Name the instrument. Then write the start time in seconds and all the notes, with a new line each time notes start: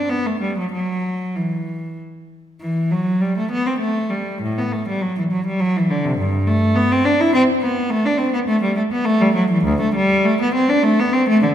cello
0.09 B3
0.26 A3
0.41 G3
0.58 F#3
0.72 F#3
1.36 E3
2.61 E3
2.91 F#3
3.21 G3
3.38 A3
3.51 B3
3.66 C4
3.80 A3
4.10 G3
4.42 A2
4.58 B3
4.72 A3
4.88 G3
5.02 F#3
5.18 E3
5.32 F#3
5.46 G3
5.60 F#3
5.76 E3
5.90 D3
6.05 C3
6.18 G2
6.47 A3
6.75 B3
6.92 C4
7.05 D4
7.20 E4
7.34 C4
7.62 B3
7.90 A3
8.05 D4
8.17 C4
8.33 B3
8.48 A3
8.63 G3
8.77 A3
8.92 B3
9.05 A3
9.21 G3
9.35 F#3
9.51 E3
9.65 D2
9.81 A3
9.95 G3
10.25 A3
10.41 B3
10.54 C4
10.69 D4
10.83 A3
10.99 B3
11.13 C4
11.29 A3
11.42 D3